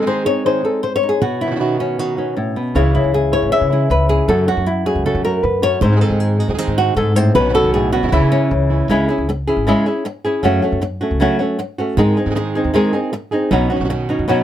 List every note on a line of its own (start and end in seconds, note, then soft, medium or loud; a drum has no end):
0.00 1.20 G#3 medium
0.00 0.05 G#3 soft
0.00 1.20 C4 soft
0.00 0.06 C4 medium
0.00 1.02 D#4 soft
0.00 0.06 D#4 medium
0.00 0.06 G#4 medium
0.06 0.25 D#3 medium
0.06 0.25 G#3 medium
0.06 0.25 C4 medium
0.06 0.25 D#4 medium
0.06 0.24 G#4 medium
0.06 0.26 C5 medium
0.26 0.45 C4 soft
0.26 0.45 D#4 soft
0.26 0.44 G#4 soft
0.26 0.45 C#5 loud
0.45 0.64 D#3 medium
0.45 0.64 G#3 medium
0.45 0.64 C4 medium
0.45 0.63 D#4 medium
0.45 0.62 G#4 medium
0.45 0.65 C5 medium
0.63 0.82 C4 soft
0.63 0.83 D#4 soft
0.63 0.82 G#4 soft
0.63 0.84 A4 medium
0.83 0.95 C5 medium
0.83 muted nylon-string guitar stroke medium
0.96 1.09 C#5 loud
1.03 1.20 D#4 soft
1.09 1.22 G#4 medium
1.22 2.55 B2 medium
1.22 1.41 F#4 medium
1.22 muted nylon-string guitar stroke medium
1.41 1.60 E4 medium
1.46 1.50 B2 soft
1.46 1.50 D#3 soft
1.46 1.50 C#4 soft
1.46 1.51 F#4 soft
1.51 1.54 B2 medium
1.51 1.55 D#3 soft
1.51 1.55 C#4 medium
1.51 1.55 F#4 medium
1.55 1.58 B2 soft
1.55 1.59 D#3 medium
1.55 1.59 C#4 medium
1.55 1.60 F#4 medium
1.60 1.78 B2 medium
1.60 1.79 D#3 medium
1.60 1.79 C#4 medium
1.60 1.79 D#4 medium
1.60 1.78 F#4 medium
1.79 1.98 D#3 soft
1.79 1.98 C#4 soft
1.79 1.99 C#4 medium
1.79 1.98 F#4 soft
1.98 2.17 B2 medium
1.98 2.17 D#3 medium
1.98 2.17 C#4 medium
1.98 2.37 D#4 medium
1.98 2.16 F#4 medium
2.17 2.36 D#3 soft
2.17 2.76 C#4 soft
2.17 2.36 C#4 soft
2.17 2.36 F#4 soft
2.37 2.56 A2 medium
2.37 muted nylon-string guitar stroke soft
2.56 2.75 B2 medium
2.75 2.97 C#2 medium
2.75 2.93 C#3 medium
2.75 4.26 C#3 medium
2.75 2.94 E3 medium
2.75 4.29 E3 soft
2.75 2.94 G#3 medium
2.75 2.93 C#4 medium
2.75 2.92 E4 medium
2.75 2.93 E4 soft
2.75 3.13 G#4 soft
2.75 2.95 C#5 medium
2.94 3.13 G#3 soft
2.94 3.13 C#4 soft
2.94 3.12 E4 soft
2.94 3.14 E4 medium
3.04 3.33 C#2 medium
3.13 3.33 G#4 medium
3.13 muted nylon-string guitar stroke medium
3.32 3.51 G#3 soft
3.32 3.51 C#4 soft
3.32 3.51 E4 soft
3.32 3.52 C#5 medium
3.42 3.50 G#1 medium
3.51 3.70 C#3 medium
3.51 3.70 E3 medium
3.51 3.71 G#3 medium
3.51 3.70 C#4 medium
3.51 3.69 E4 medium
3.51 3.90 E5 medium
3.61 3.83 C#3 medium
3.70 3.90 G#3 soft
3.70 3.90 C#4 soft
3.70 3.89 E4 soft
3.70 4.27 E4 soft
3.70 3.90 G#4 soft
3.90 4.19 C#2 medium
3.90 4.09 B4 medium
3.90 muted nylon-string guitar stroke medium
4.09 4.28 G#3 soft
4.09 4.28 C#4 soft
4.09 4.28 E4 soft
4.09 4.28 G#4 medium
4.28 4.50 F#2 loud
4.28 5.61 F#2 medium
4.28 4.47 C#3 medium
4.28 4.47 F#3 medium
4.28 4.47 A3 medium
4.28 4.47 C#4 medium
4.28 4.46 F#4 medium
4.28 4.48 A4 loud
4.48 4.66 A3 soft
4.48 4.67 C#4 soft
4.48 4.66 F#4 soft
4.48 4.67 F#4 medium
4.57 4.86 F#2 medium
4.66 4.86 E4 medium
4.66 muted nylon-string guitar stroke medium
4.86 5.05 A3 soft
4.86 5.05 C#4 soft
4.86 5.04 F#4 soft
4.86 5.05 G#4 medium
4.95 5.03 C#2 medium
5.05 5.24 C#3 medium
5.05 5.24 F#3 medium
5.05 5.24 A3 medium
5.05 5.24 C#4 medium
5.05 5.24 F#4 medium
5.05 5.24 A4 medium
5.15 5.37 F#3 medium
5.25 5.43 A3 soft
5.25 5.43 C#4 soft
5.25 5.43 F#4 medium
5.25 5.44 A#4 loud
5.43 5.73 F#2 medium
5.43 5.63 B4 medium
5.43 muted nylon-string guitar stroke medium
5.62 5.82 F#2 medium
5.62 5.82 A3 soft
5.62 5.82 C#4 soft
5.62 5.81 F#4 soft
5.62 5.82 C#5 loud
5.81 6.04 G#2 loud
5.81 6.96 G#2 medium
5.81 7.34 G#3 soft
5.81 7.34 C4 soft
5.81 7.34 D#4 soft
5.81 6.01 C5 medium
5.81 muted nylon-string guitar stroke medium
5.92 5.95 G#3 soft
5.92 5.95 C4 soft
5.92 5.96 D#4 soft
5.92 5.96 G#4 soft
5.96 6.00 G#3 medium
5.96 6.00 C4 medium
5.96 6.00 D#4 medium
5.96 6.01 G#4 medium
6.01 6.39 D#3 medium
6.01 6.39 G#3 medium
6.01 6.39 C4 medium
6.01 6.39 D#4 medium
6.01 6.38 G#4 medium
6.01 6.20 A4 loud
6.10 6.40 G#2 medium
6.20 6.40 G#4 medium
6.39 6.49 C4 soft
6.39 6.49 D#4 soft
6.39 6.58 F#4 loud
6.39 6.49 G#4 soft
6.48 6.56 D#2 medium
6.48 6.53 G#3 soft
6.48 6.53 C4 soft
6.48 6.53 D#4 soft
6.48 6.54 G#4 medium
6.54 6.57 G#3 medium
6.54 6.58 C4 medium
6.54 6.58 D#4 medium
6.54 6.58 G#4 medium
6.58 6.95 D#3 medium
6.58 6.96 G#3 medium
6.58 6.96 C4 medium
6.58 6.96 D#4 medium
6.58 6.77 G#4 loud
6.58 6.96 G#4 medium
6.68 6.90 G#2 medium
6.78 6.96 F#4 loud
6.96 7.26 G#2 loud
6.96 7.15 G#2 medium
6.96 7.16 A4 medium
6.96 muted nylon-string guitar stroke medium
7.16 7.35 A2 medium
7.16 7.35 C4 soft
7.16 7.35 D#4 soft
7.16 7.34 G#4 soft
7.16 7.35 C5 loud
7.35 7.57 B1 loud
7.35 7.92 B2 medium
7.35 8.10 F#3 medium
7.35 8.11 C#4 medium
7.35 8.11 D#4 medium
7.35 7.54 B4 medium
7.35 muted nylon-string guitar stroke medium
7.40 7.43 B2 soft
7.40 7.44 D#3 soft
7.40 7.44 C#4 soft
7.40 7.45 F#4 soft
7.44 7.48 B2 medium
7.44 7.48 D#3 medium
7.44 7.49 C#4 medium
7.44 7.49 F#4 medium
7.49 7.52 B2 medium
7.49 7.53 D#3 medium
7.49 7.53 C#4 medium
7.49 7.54 F#4 medium
7.54 7.92 B2 medium
7.54 7.92 D#3 medium
7.54 7.92 C#4 medium
7.54 7.92 F#4 medium
7.54 7.73 A4 loud
7.64 7.94 B1 medium
7.74 7.94 A2 medium
7.74 7.92 G#4 medium
7.93 8.12 B2 medium
7.93 8.03 D#3 soft
7.93 8.03 C#4 soft
7.93 8.12 F#4 medium
7.93 8.04 F#4 soft
8.03 8.10 F#2 medium
8.03 8.06 E3 soft
8.03 8.07 G#3 soft
8.03 8.07 C#4 soft
8.03 8.08 E4 medium
8.08 8.11 E3 medium
8.08 8.12 G#3 medium
8.08 8.12 C#4 medium
8.08 8.12 E4 medium
8.12 8.20 C#2 loud
8.12 8.50 C#3 medium
8.12 8.87 C#3 medium
8.12 8.50 E3 medium
8.12 8.89 E3 medium
8.12 8.50 G#3 medium
8.12 8.50 C#4 medium
8.12 8.30 C#4 medium
8.12 8.31 E4 medium
8.12 8.51 E4 medium
8.22 8.44 C#3 medium
8.32 8.51 C#4 loud
8.51 8.80 C#2 loud
8.51 muted nylon-string guitar stroke medium
8.70 8.89 G#3 soft
8.70 8.89 C#4 soft
8.70 8.89 E4 soft
8.89 9.04 C#2 medium
8.89 9.08 C#3 medium
8.89 9.08 G#3 medium
8.89 9.08 C#4 medium
8.89 9.09 E4 medium
8.89 9.07 G#4 medium
9.09 9.28 C#4 soft
9.09 9.28 E4 soft
9.09 9.27 G#4 medium
9.18 9.48 C#2 medium
9.29 muted nylon-string guitar stroke medium
9.47 9.67 C#4 soft
9.47 9.66 E4 soft
9.47 9.66 G#4 medium
9.57 9.71 G#1 medium
9.67 9.85 C#3 medium
9.67 9.85 G#3 medium
9.67 9.86 C#4 medium
9.67 9.86 E4 medium
9.67 9.85 G#4 medium
9.86 10.04 C#4 soft
9.86 10.05 E4 soft
9.86 10.04 G#4 medium
10.05 muted nylon-string guitar stroke medium
10.25 10.43 C#4 soft
10.25 10.43 E4 medium
10.25 10.43 G#4 medium
10.43 10.58 F#2 medium
10.43 10.62 C#3 medium
10.43 10.62 F#3 medium
10.43 10.62 A3 medium
10.43 10.62 C#4 medium
10.43 10.61 F#4 medium
10.62 10.81 A3 soft
10.62 10.81 C#4 medium
10.62 10.81 F#4 medium
10.72 11.02 F#2 medium
10.81 muted nylon-string guitar stroke medium
11.01 11.20 A3 soft
11.01 11.20 C#4 medium
11.01 11.19 F#4 medium
11.11 11.25 C#2 medium
11.20 11.39 C#3 medium
11.20 11.39 F#3 medium
11.20 11.39 A3 medium
11.20 11.39 C#4 medium
11.20 11.38 F#4 medium
11.39 11.58 A3 soft
11.39 11.58 C#4 soft
11.39 11.58 F#4 medium
11.59 muted nylon-string guitar stroke medium
11.78 11.98 A3 soft
11.78 11.97 C#4 soft
11.78 11.97 F#4 medium
11.97 12.12 G#2 medium
11.97 12.16 D#3 medium
11.97 12.16 G#3 medium
11.97 12.16 C4 medium
11.97 12.16 D#4 medium
11.97 12.16 G#4 medium
11.97 muted nylon-string guitar stroke medium
12.17 12.35 C4 soft
12.17 12.36 D#4 soft
12.17 12.35 G#4 medium
12.26 12.56 G#2 medium
12.26 12.29 G#3 soft
12.26 12.30 C4 soft
12.26 12.30 D#4 soft
12.26 12.31 G#4 soft
12.30 12.34 G#3 medium
12.30 12.34 C4 medium
12.30 12.35 D#4 medium
12.30 12.35 G#4 medium
12.35 12.72 D#3 medium
12.35 12.73 G#3 medium
12.35 12.73 C4 medium
12.35 12.73 D#4 medium
12.35 12.74 G#4 medium
12.35 muted nylon-string guitar stroke medium
12.55 12.73 C4 soft
12.55 12.74 D#4 medium
12.55 12.74 G#4 medium
12.64 12.79 D#2 medium
12.73 12.92 D#3 medium
12.73 12.93 D#3 medium
12.73 12.93 G#3 medium
12.73 12.93 C4 medium
12.73 12.93 D#4 medium
12.73 12.92 G#4 medium
12.93 13.11 C4 soft
12.93 13.12 C4 soft
12.93 13.12 D#4 soft
12.93 13.12 D#4 medium
12.93 13.12 G#4 soft
12.93 13.12 G#4 medium
13.12 muted nylon-string guitar stroke medium
13.31 13.51 C4 soft
13.31 13.52 C4 soft
13.31 13.51 D#4 soft
13.31 13.50 G#4 soft
13.31 13.51 G#4 medium
13.51 13.66 B1 medium
13.51 13.70 B2 medium
13.51 13.70 F#3 medium
13.51 13.70 C#4 medium
13.51 13.70 D#4 medium
13.51 13.69 F#4 medium
13.51 muted nylon-string guitar stroke medium
13.70 13.89 C#4 soft
13.70 13.89 D#4 soft
13.70 13.89 F#4 medium
13.76 13.79 B2 soft
13.76 13.79 D#3 soft
13.76 13.80 C#4 medium
13.76 13.80 F#4 soft
13.80 14.09 B1 medium
13.80 13.83 B2 soft
13.80 13.84 D#3 medium
13.80 13.84 C#4 medium
13.80 13.84 F#4 medium
13.84 13.88 B2 medium
13.84 13.88 D#3 medium
13.84 13.89 C#4 medium
13.84 13.89 F#4 medium
13.89 14.27 B2 medium
13.89 14.27 D#3 medium
13.89 14.28 C#4 medium
13.89 14.28 F#4 medium
13.89 muted nylon-string guitar stroke medium
14.09 14.28 C#4 soft
14.09 14.28 D#4 medium
14.09 14.28 F#4 medium
14.19 14.34 F#2 medium
14.28 14.43 B2 medium
14.28 14.43 D#3 medium
14.28 14.43 F#3 medium
14.28 14.43 C#4 medium
14.28 14.43 D#4 medium
14.28 14.43 F#4 medium